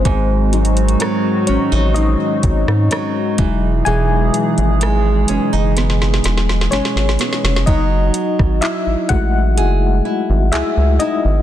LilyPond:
<<
  \new Staff \with { instrumentName = "FM electric piano" } { \time 4/4 \key fis \dorian \tempo 4 = 63 <bis bis'>4. <cis' cis''>8 <dis' dis''>2 | <gis' gis''>2. <cis' cis''>4 | <dis' dis''>4 <e' e''>8 <fis' fis''>4. <e' e''>8 <dis' dis''>8 | }
  \new Staff \with { instrumentName = "FM electric piano" } { \clef bass \time 4/4 \key fis \dorian r8 <fis gis dis'>2. <fis gis dis'>8~ | <fis gis dis'>4 r2. | r4. <gis a e'>4. r4 | }
  \new Staff \with { instrumentName = "Nylon-string guitar" } { \time 4/4 \key fis \dorian gis,4 fis8 cis'16 dis'16 bis4 fis8 e8 | e4 gis8 cis'16 dis'16 b4 gis8 b8 | fis4 e'4 gis'8 e'8 gis'8 e'8 | }
  \new Staff \with { instrumentName = "Analog synth pad" } { \clef bass \time 4/4 \key fis \dorian << { <dis fis fis'>2.~ <dis fis fis'>8 <b, e gis'>8~ | <b, e gis'>1 | r1 | } \\ { <gis dis'>1~ | <gis dis'>1 | r1 | } >> }
  \new Staff \with { instrumentName = "Analog synth bass" } { \clef bass \time 4/4 \key fis \dorian gis,,4 r8 a,,16 a,,8 r16 gis,,16 gis,16 r8 e,,8 | e,,8 r16 gis,,8. fis,,16 fis,,8. e,,8 gis,,16 gis,,16 r16 eis,,16 | fis,,8 r16 gis,,16 r16 a,,16 a,,8 fis,,8 r16 gis,,16 cis,16 cis,16 r16 gis,,16 | }
  \new DrumStaff \with { instrumentName = "Drums" } \drummode { \time 4/4 <hh bd>8 hh32 hh32 hh32 hh32 <hh ss>8 hh8 hh8 <hh bd>16 ss16 <hh ss>8 <hh bd>8 | hh8 hh16 hh16 <hh ss>8 hh8 <hh sn>32 sn32 sn32 sn32 <hh sn>32 sn32 sn32 sn32 <hh sn>32 sn32 sn32 sn32 <hh sn>32 sn32 sn32 sn32 | <hh bd>8 hh16 <bd ss>16 <hc hh>8 <hh bd>8 hh4 <hc hh>8 hh8 | }
>>